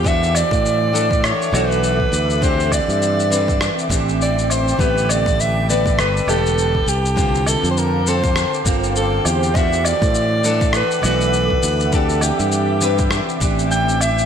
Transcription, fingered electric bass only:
X:1
M:4/4
L:1/16
Q:"Swing 16ths" 1/4=101
K:Edor
V:1 name="Fingered electric bass" clef=bass
E,,2 z A,,4- A,, z2 B,,,3 z D,,2- | D,,2 z G,,4- G,, z2 A,,,4- A,,, z | A,,,8 G,,, z E,,,3 z =C,,2- | =C,,2 z =F,,4- F,, z2 G,,,3 z E,,2- |
E,,2 z A,,4- A,, z2 B,,,3 z D,,2- | D,,2 z G,,4- G,, z2 A,,,4- A,,, z |]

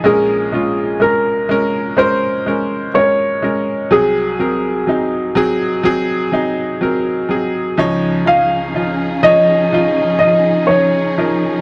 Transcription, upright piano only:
X:1
M:4/4
L:1/8
Q:1/4=62
K:Db
V:1 name="Upright piano"
[A,DB] [A,DF] [A,DB] [A,DB] [A,DB] [A,DB] [A,DB] [A,DB] | [G,CA] [G,CB] [G,CE] [G,CA] [G,CA] [G,CE] [G,CB] [G,CA] | [F,Ed] [F,Ee] [F,EF] [F,Ed] [F,EF] [F,EF] [F,Ed] [F,EB] |]
V:2 name="Upright piano" clef=bass
[B,,,B,,]8 | [C,,C,]8 | [D,,D,]8 |]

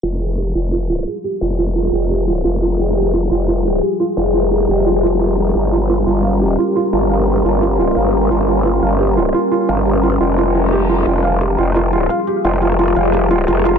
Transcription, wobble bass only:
X:1
M:4/4
L:1/8
Q:1/4=174
K:Fm
V:1 name="Wobble bass" clef=bass
F,,,3 F,,,3 z2 | F,,,3 F,,,3 F,,,2 | F,,,3 F,,,3 z2 | F,,,3 F,,,4- F,,, |
G,,,3 G,,,3 z2 | G,,,3 G,,,3 G,,,2 | G,,,3 G,,,3 z2 | G,,,3 F,,,4- F,,, |
F,,,3 F,,,3 z2 | F,,,3 F,,,3 F,,,2 |]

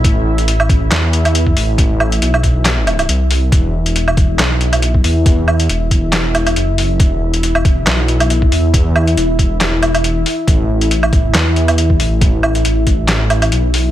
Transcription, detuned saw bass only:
X:1
M:4/4
L:1/8
Q:"Swing 16ths" 1/4=138
K:Ador
V:1 name="Detuned saw bass" clef=bass
A,,,4 E,,3 A,,,- | A,,,2 B,,,4 C,,2 | E,,,4 B,,,3 E,,- | E,,2 E,,,4 F,,,2 |
E,,,4 B,,,3 E,,- | E,,2 E,,,2 E,,,3 z | A,,,4 E,,3 A,,,- | A,,,2 A,,,4 B,,,2 |]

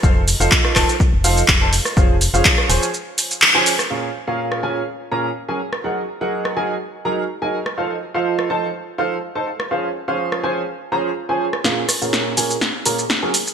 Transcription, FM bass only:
X:1
M:4/4
L:1/16
Q:1/4=124
K:Bbm
V:1 name="FM bass" clef=bass
F,,,3 F,,, z2 E,,, z2 F,,,3 F,,,3 z | F,,,3 F,,, z2 E,,, z8 z | z16 | z16 |
z16 | z16 | z16 |]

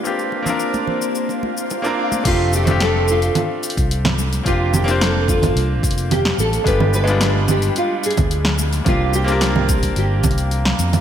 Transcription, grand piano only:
X:1
M:4/4
L:1/16
Q:1/4=109
K:F
V:1 name="Grand piano"
[B,CDFG]3 [B,CDFB]8- [B,CDFB]2 [B,CDFB]3 | [A,CDFG]3 [A,CDFG]12- [A,CDFG] | [B,CDFG]3 [B,CDFc]12- [B,CDFc] | [_A,=B,DFG]3 [G,A,B,DF]12- [G,A,B,DF] |
[B,CDFG]3 [B,CDFB]12- [B,CDFB] |]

